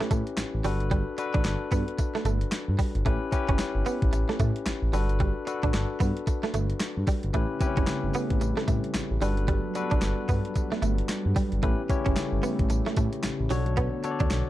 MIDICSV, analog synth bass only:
0, 0, Header, 1, 2, 480
1, 0, Start_track
1, 0, Tempo, 535714
1, 818, Time_signature, 4, 2, 24, 8
1, 12989, End_track
2, 0, Start_track
2, 0, Title_t, "Analog synth bass"
2, 0, Program_c, 0, 38
2, 97, Note_on_c, 0, 45, 98
2, 202, Note_off_c, 0, 45, 0
2, 334, Note_on_c, 0, 33, 47
2, 394, Note_off_c, 0, 33, 0
2, 483, Note_on_c, 0, 33, 93
2, 551, Note_off_c, 0, 33, 0
2, 578, Note_on_c, 0, 31, 97
2, 922, Note_off_c, 0, 31, 0
2, 1205, Note_on_c, 0, 33, 97
2, 1272, Note_off_c, 0, 33, 0
2, 1295, Note_on_c, 0, 31, 94
2, 1401, Note_off_c, 0, 31, 0
2, 1538, Note_on_c, 0, 43, 100
2, 1642, Note_off_c, 0, 43, 0
2, 2014, Note_on_c, 0, 31, 91
2, 2188, Note_off_c, 0, 31, 0
2, 2404, Note_on_c, 0, 43, 105
2, 2471, Note_off_c, 0, 43, 0
2, 2645, Note_on_c, 0, 31, 92
2, 2712, Note_off_c, 0, 31, 0
2, 2740, Note_on_c, 0, 33, 103
2, 2844, Note_off_c, 0, 33, 0
2, 3127, Note_on_c, 0, 30, 93
2, 3194, Note_off_c, 0, 30, 0
2, 3361, Note_on_c, 0, 31, 93
2, 3429, Note_off_c, 0, 31, 0
2, 3606, Note_on_c, 0, 33, 100
2, 3673, Note_off_c, 0, 33, 0
2, 3698, Note_on_c, 0, 33, 102
2, 3802, Note_off_c, 0, 33, 0
2, 3938, Note_on_c, 0, 45, 113
2, 4043, Note_off_c, 0, 45, 0
2, 4177, Note_on_c, 0, 33, 48
2, 4236, Note_off_c, 0, 33, 0
2, 4322, Note_on_c, 0, 33, 102
2, 4390, Note_off_c, 0, 33, 0
2, 4416, Note_on_c, 0, 31, 99
2, 4761, Note_off_c, 0, 31, 0
2, 5048, Note_on_c, 0, 33, 95
2, 5114, Note_off_c, 0, 33, 0
2, 5140, Note_on_c, 0, 31, 88
2, 5244, Note_off_c, 0, 31, 0
2, 5379, Note_on_c, 0, 43, 111
2, 5483, Note_off_c, 0, 43, 0
2, 5857, Note_on_c, 0, 31, 89
2, 6030, Note_off_c, 0, 31, 0
2, 6242, Note_on_c, 0, 43, 106
2, 6310, Note_off_c, 0, 43, 0
2, 6484, Note_on_c, 0, 31, 91
2, 6551, Note_off_c, 0, 31, 0
2, 6577, Note_on_c, 0, 33, 100
2, 6681, Note_off_c, 0, 33, 0
2, 6965, Note_on_c, 0, 30, 99
2, 7032, Note_off_c, 0, 30, 0
2, 7202, Note_on_c, 0, 31, 88
2, 7270, Note_off_c, 0, 31, 0
2, 7441, Note_on_c, 0, 33, 99
2, 7509, Note_off_c, 0, 33, 0
2, 7535, Note_on_c, 0, 33, 108
2, 7640, Note_off_c, 0, 33, 0
2, 7777, Note_on_c, 0, 45, 95
2, 7882, Note_off_c, 0, 45, 0
2, 8015, Note_on_c, 0, 33, 47
2, 8074, Note_off_c, 0, 33, 0
2, 8161, Note_on_c, 0, 33, 101
2, 8229, Note_off_c, 0, 33, 0
2, 8254, Note_on_c, 0, 31, 103
2, 8599, Note_off_c, 0, 31, 0
2, 8884, Note_on_c, 0, 33, 95
2, 8951, Note_off_c, 0, 33, 0
2, 8974, Note_on_c, 0, 31, 99
2, 9080, Note_off_c, 0, 31, 0
2, 9217, Note_on_c, 0, 43, 100
2, 9322, Note_off_c, 0, 43, 0
2, 9696, Note_on_c, 0, 31, 98
2, 9869, Note_off_c, 0, 31, 0
2, 10086, Note_on_c, 0, 43, 113
2, 10153, Note_off_c, 0, 43, 0
2, 10323, Note_on_c, 0, 31, 89
2, 10391, Note_off_c, 0, 31, 0
2, 10419, Note_on_c, 0, 33, 107
2, 10523, Note_off_c, 0, 33, 0
2, 10806, Note_on_c, 0, 30, 95
2, 10873, Note_off_c, 0, 30, 0
2, 11042, Note_on_c, 0, 31, 91
2, 11110, Note_off_c, 0, 31, 0
2, 11284, Note_on_c, 0, 33, 104
2, 11352, Note_off_c, 0, 33, 0
2, 11379, Note_on_c, 0, 33, 102
2, 11483, Note_off_c, 0, 33, 0
2, 11621, Note_on_c, 0, 45, 96
2, 11724, Note_off_c, 0, 45, 0
2, 11860, Note_on_c, 0, 33, 49
2, 11918, Note_off_c, 0, 33, 0
2, 12006, Note_on_c, 0, 33, 102
2, 12073, Note_off_c, 0, 33, 0
2, 12100, Note_on_c, 0, 35, 104
2, 12443, Note_off_c, 0, 35, 0
2, 12726, Note_on_c, 0, 38, 94
2, 12793, Note_off_c, 0, 38, 0
2, 12819, Note_on_c, 0, 35, 94
2, 12923, Note_off_c, 0, 35, 0
2, 12989, End_track
0, 0, End_of_file